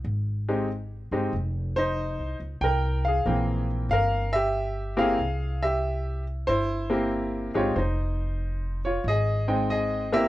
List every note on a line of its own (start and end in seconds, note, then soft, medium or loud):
0.04 1.08 G#1 medium
0.48 0.67 G#3 medium
0.48 0.67 C4 soft
0.48 0.68 D#4 soft
0.48 0.67 G4 medium
1.11 1.31 G1 medium
1.11 1.31 G#3 medium
1.11 1.31 C4 medium
1.11 1.31 D#4 medium
1.11 1.32 G4 medium
1.33 2.15 F1 medium
1.76 2.37 D#4 medium
1.76 2.37 C5 loud
2.19 2.39 C2 medium
2.40 2.60 C#2 medium
2.61 3.22 C2 medium
2.61 3.03 A#4 medium
2.61 3.02 G5 medium
3.05 3.67 G#4 medium
3.05 3.65 F5 medium
3.26 3.86 A#1 medium
3.26 4.25 E3 soft
3.26 4.25 A#3 soft
3.26 4.25 C4 soft
3.26 4.25 G5 medium
3.89 5.14 G1 medium
3.89 4.32 A#4 medium
3.89 4.35 F5 loud
4.33 4.95 G4 medium
4.33 4.93 E5 loud
4.96 5.16 A#3 medium
4.96 5.16 C4 medium
4.96 5.16 E4 medium
4.96 5.16 G4 medium
4.96 5.59 G#4 medium
4.96 5.64 F5 medium
5.19 6.43 C2 medium
5.62 6.23 G4 medium
5.62 6.22 E5 medium
6.47 7.51 G1 medium
6.47 6.89 E4 medium
6.47 7.07 C5 loud
6.90 7.50 A#3 medium
6.90 7.50 C4 medium
6.90 7.50 E4 medium
6.90 7.50 G4 medium
7.54 7.75 G1 medium
7.54 7.74 G#3 medium
7.54 7.74 C4 medium
7.54 7.74 D#4 medium
7.54 7.76 F4 medium
7.54 7.74 G4 medium
7.54 7.77 C#5 medium
7.76 9.00 F1 medium
7.76 8.80 D#4 medium
7.76 8.79 C5 medium
8.85 9.05 F4 medium
8.85 9.04 C#5 medium
9.04 10.28 G#1 medium
9.04 9.66 D#5 medium
9.09 9.67 G#4 medium
9.48 10.07 G#3 medium
9.48 10.08 C4 medium
9.48 10.08 D#4 medium
9.48 10.08 G5 medium
9.70 10.10 G#4 medium
9.70 10.14 D#5 medium
10.12 10.28 A#3 medium
10.12 10.28 C4 medium
10.12 10.28 E4 medium
10.12 10.28 G4 medium
10.12 10.28 A#4 medium
10.12 10.28 E5 loud